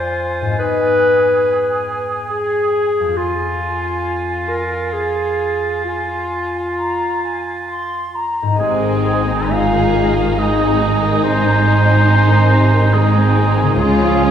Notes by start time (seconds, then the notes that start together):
Already playing: F2 C4 F4 G#4 C5 G#5
0.41 G#2
0.46 B3
0.51 D#4
0.55 G#4 B4
0.59 G#4
2.30 G#4
3.00 F2
3.05 C4
3.09 F4
3.14 F4 G#4
3.18 F4 G#5
4.49 A#4
4.93 G#4 G#5
5.85 F4 G#5
6.78 A#5
7.25 G#5
7.70 C6
8.15 A#5
8.42 G#2
8.47 C4
8.52 D#4
8.56 G#1 G#2 C3 G#3 C4 D#4 G#4
8.60 G#5
8.81 D#3
9.04 G#3
9.28 C4
9.51 G#3 F4 G#4 F5
9.73 D#3
9.95 C3
10.17 D#3
10.38 G#3 D#4 G#4 D#5 G#5
10.59 C4
10.81 G#3
11.02 D#3
11.24 C3 C4 D#4 C5 G#5
11.46 D#3
11.67 G#3
11.87 C4
12.10 G#3
12.30 D#3
12.52 C3
12.73 D#3
12.93 G#3 C4 D#4 G#4 G#5
13.16 C4
13.37 G#3
13.58 D#3
13.62 C#3
13.66 C#4
13.71 F4
13.76 C#2 C#3 G#3 C#4 G#4 G#5
13.80 C#2 G#3 F4 G#4
14.02 F3
14.25 G#3